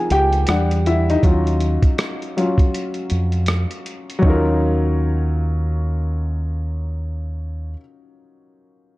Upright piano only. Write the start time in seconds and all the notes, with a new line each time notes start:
Already playing: F3 C4 D#4 G#4 A#4 G#5 A#5
0.12 G4 G5
0.48 G3 D4 F#5
0.87 E4 E5
1.10 D#4 D#5
1.23 F#3 C#4 F4
2.37 F#3 C#4 F4
4.19 F#3 C#4
4.24 D#4 F4
4.30 A#4